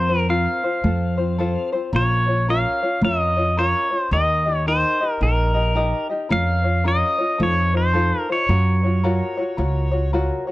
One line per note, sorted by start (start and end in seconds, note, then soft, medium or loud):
0.00 0.45 F2 loud
0.00 0.20 C5 medium
0.09 0.28 C4 soft
0.09 0.28 F4 soft
0.09 0.29 C5 soft
0.20 0.31 A#4 medium
0.29 0.63 C4 medium
0.29 0.63 F4 medium
0.29 0.63 A#4 medium
0.29 0.62 C5 medium
0.29 1.69 F5 medium
0.64 0.83 C4 soft
0.64 0.84 F4 soft
0.64 0.84 C5 medium
0.84 1.55 F2 medium
0.84 1.18 C4 medium
0.84 1.18 F4 medium
0.84 1.18 A4 soft
0.84 1.16 C5 medium
1.17 1.38 C4 soft
1.17 1.38 F4 soft
1.17 1.38 C5 medium
1.38 1.73 C4 loud
1.38 1.73 F4 medium
1.38 1.73 A4 medium
1.38 1.71 C5 loud
1.72 1.93 C4 soft
1.72 1.93 F4 soft
1.72 1.93 C5 medium
1.93 2.64 A#1 medium
1.93 2.27 C#4 medium
1.93 2.27 F4 medium
1.93 2.27 A#4 medium
1.93 2.27 C#5 medium
1.93 2.51 C#5 medium
2.28 2.48 C#4 soft
2.28 2.48 F4 soft
2.28 2.48 C#5 soft
2.48 2.82 C#4 medium
2.48 2.82 F4 medium
2.48 2.82 A#4 medium
2.48 2.81 C#5 medium
2.48 3.04 F5 loud
2.83 3.02 C#4 soft
2.83 3.03 F4 medium
2.83 3.02 C#5 medium
3.01 3.73 F2 medium
3.01 3.37 C#4 medium
3.01 3.37 F4 medium
3.01 3.37 A#4 medium
3.01 3.36 C#5 medium
3.01 3.60 D#5 medium
3.37 3.57 C#4 soft
3.37 3.57 F4 soft
3.37 3.57 C#5 medium
3.57 3.92 C#4 medium
3.57 3.91 F4 medium
3.57 3.91 A#4 medium
3.57 3.89 C#5 medium
3.57 3.99 C#5 medium
3.90 4.12 C#4 soft
3.90 4.12 F4 soft
3.90 4.11 C#5 soft
3.99 4.12 C5 medium
4.11 4.82 D#2 medium
4.11 4.46 D#4 medium
4.11 4.45 G4 medium
4.11 4.46 A#4 medium
4.11 4.57 D#5 medium
4.11 4.44 D#5 medium
4.46 4.66 D#4 soft
4.46 4.66 G4 soft
4.46 4.66 D#5 medium
4.57 4.68 C#5 medium
4.66 5.01 D#4 medium
4.66 5.01 G4 medium
4.66 5.01 A#4 medium
4.66 5.12 C5 medium
4.66 4.99 D#5 medium
5.01 5.20 D#4 soft
5.01 5.20 G4 soft
5.01 5.21 D#5 medium
5.12 5.23 A#4 medium
5.21 5.92 A#1 medium
5.21 5.55 D#4 medium
5.21 5.55 G4 medium
5.21 5.55 A#4 medium
5.21 6.07 A#4 medium
5.21 5.53 D#5 medium
5.54 5.74 D#4 soft
5.54 5.74 G4 soft
5.54 5.75 D#5 medium
5.75 6.10 D#4 medium
5.75 6.09 G4 medium
5.75 6.09 A#4 medium
5.75 6.08 D#5 medium
6.10 6.29 D#4 soft
6.10 6.30 G4 medium
6.10 6.30 D#5 medium
6.29 7.01 F2 medium
6.29 6.64 C#4 medium
6.29 6.64 F4 medium
6.29 6.64 A#4 medium
6.29 6.63 C#5 medium
6.29 6.87 F5 loud
6.64 6.83 C#4 soft
6.64 6.84 F4 soft
6.64 6.84 C#5 soft
6.84 7.19 C#4 medium
6.84 7.18 F4 medium
6.84 7.19 A#4 medium
6.84 7.17 C#5 medium
6.84 7.43 D#5 medium
7.18 7.39 C#4 soft
7.18 7.39 F4 medium
7.18 7.39 C#5 medium
7.38 8.11 F2 medium
7.38 7.74 D#4 medium
7.38 7.73 F4 medium
7.38 7.73 A4 medium
7.38 7.72 C5 medium
7.43 7.77 C#5 medium
7.73 7.93 D#4 soft
7.73 7.93 F4 soft
7.73 7.94 C5 medium
7.73 8.20 C5 medium
7.93 8.28 D#4 medium
7.93 8.29 F4 medium
7.93 8.28 A4 medium
7.93 8.28 C5 medium
8.20 8.32 A#4 medium
8.29 8.49 D#4 soft
8.29 8.48 F4 soft
8.29 8.49 C5 soft
8.29 10.11 C#5 medium
8.49 9.20 F#2 medium
8.49 8.83 F4 medium
8.49 8.83 F#4 medium
8.49 8.83 A#4 medium
8.49 8.82 C#5 medium
8.84 9.03 F4 soft
8.84 9.03 F#4 soft
8.84 9.04 C#5 medium
9.03 9.38 F4 medium
9.03 9.37 F#4 medium
9.03 9.38 A#4 medium
9.03 9.36 C#5 medium
9.37 9.57 F4 medium
9.37 9.57 F#4 medium
9.37 9.58 C#5 medium
9.57 10.29 C#2 medium
9.57 9.92 F4 medium
9.57 9.92 F#4 medium
9.57 9.92 A#4 medium
9.57 9.90 C#5 medium
9.91 10.12 F4 soft
9.91 10.13 F#4 medium
9.91 10.12 C#5 medium
10.13 10.47 F4 medium
10.13 10.47 F#4 loud
10.13 10.47 A#4 medium
10.13 10.46 C#5 medium
10.47 10.52 F#4 soft
10.47 10.52 C#5 medium